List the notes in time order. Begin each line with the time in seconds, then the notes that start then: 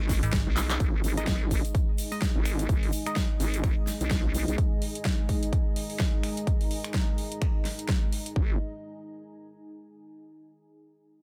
Already playing: G#1 G#3 D#4 G#4 D#5 C#6
0.09 kick, snare, open hi-hat, shaker
0.23 G#1, closed hi-hat, shaker
0.32 finger snap, kick, snare, closed hi-hat, shaker
0.47 B1
0.56 clap, open hi-hat, shaker
0.70 clap, closed hi-hat, shaker
0.80 G#1 G#3 D#4 D#5, kick, closed hi-hat, shaker
0.89 G#4
1.04 G#1, open hi-hat, shaker
1.17 G#3 D#4 D#5, closed hi-hat, shaker
1.22 G#5
1.27 G#1, kick, snare, closed hi-hat, shaker
1.51 G#1, kick, open hi-hat, shaker
1.65 closed hi-hat, shaker
1.75 kick, closed hi-hat, shaker
1.98 open hi-hat, shaker
2.11 G#3 D#4 D#5, open hi-hat, shaker
2.22 kick, snare, closed hi-hat, shaker
2.36 G#1
2.46 finger snap, open hi-hat, shaker
2.59 closed hi-hat, shaker
2.69 G#1, kick, closed hi-hat, shaker
2.83 open hi-hat
2.92 open hi-hat, shaker
3.06 G#3 D#4 D#5, finger snap, closed hi-hat, shaker
3.16 kick, snare, closed hi-hat, shaker
3.40 G#1, open hi-hat, shaker
3.53 closed hi-hat, shaker
3.64 finger snap, kick, closed hi-hat, shaker
3.87 snare, open hi-hat, shaker
4.00 B1, closed hi-hat, shaker
4.11 kick, snare, closed hi-hat, shaker
4.34 B1, open hi-hat, shaker
4.48 B1, closed hi-hat, shaker
4.58 kick, closed hi-hat
4.82 open hi-hat
4.87 A#5
4.95 closed hi-hat
5.05 kick, snare, closed hi-hat
5.29 kick, open hi-hat
5.43 closed hi-hat
5.53 kick, closed hi-hat
5.76 open hi-hat
5.90 open hi-hat
5.99 kick, snare, closed hi-hat
6.23 finger snap, open hi-hat
6.37 closed hi-hat
6.47 kick, closed hi-hat
6.61 open hi-hat
6.71 open hi-hat
6.84 finger snap, closed hi-hat
6.94 kick, snare, closed hi-hat
7.18 open hi-hat
7.32 closed hi-hat
7.42 finger snap, kick, closed hi-hat
7.65 snare, open hi-hat
7.79 closed hi-hat
7.89 kick, snare, closed hi-hat
8.13 open hi-hat
8.26 closed hi-hat
8.36 G#1 G#3 D#4 D#5, kick
8.44 G#4
8.52 G#5